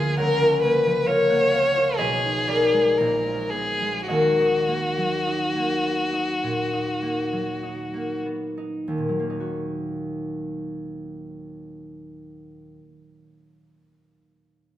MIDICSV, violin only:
0, 0, Header, 1, 2, 480
1, 0, Start_track
1, 0, Key_signature, -6, "minor"
1, 0, Tempo, 896861
1, 104, Time_signature, 4, 2, 24, 8
1, 1067, Tempo, 988468
1, 1547, Tempo, 1107011
1, 2027, Tempo, 1160542
1, 2987, Tempo, 1219512
1, 4427, Tempo, 1176471
1, 6348, End_track
2, 0, Start_track
2, 0, Title_t, "Violin"
2, 0, Program_c, 0, 40
2, 0, Note_on_c, 0, 68, 50
2, 100, Note_off_c, 0, 68, 0
2, 103, Note_on_c, 0, 70, 64
2, 330, Note_off_c, 0, 70, 0
2, 333, Note_on_c, 0, 71, 56
2, 570, Note_on_c, 0, 73, 70
2, 578, Note_off_c, 0, 71, 0
2, 1058, Note_on_c, 0, 68, 54
2, 1066, Note_off_c, 0, 73, 0
2, 1544, Note_on_c, 0, 70, 41
2, 1551, Note_off_c, 0, 68, 0
2, 1770, Note_on_c, 0, 68, 51
2, 1777, Note_off_c, 0, 70, 0
2, 2019, Note_off_c, 0, 68, 0
2, 2021, Note_on_c, 0, 66, 54
2, 3690, Note_off_c, 0, 66, 0
2, 6348, End_track
0, 0, End_of_file